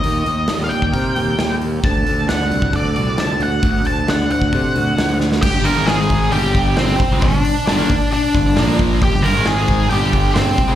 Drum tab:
CC |----------------|----------------|----------------|x---------------|
HH |o-o-o-o-o-o-o-o-|o-o-o-o-o-o-o-o-|o-o-o-o-o-o-o---|--o-o-o-o-o-o-o-|
SD |----o-------o---|----o-------o---|----o-------o-oo|----o-------o---|
BD |-------oo-------|o------oo-------|o------oo-------|o-----o---o---o-|

CC |----------------|----------------|
HH |o-o-o-o-o-o-o-o-|o-o-o-o-o-o-o-o-|
SD |----o-----o-o---|----o-------o---|
BD |o-----o---o---o-|o-----o---o---o-|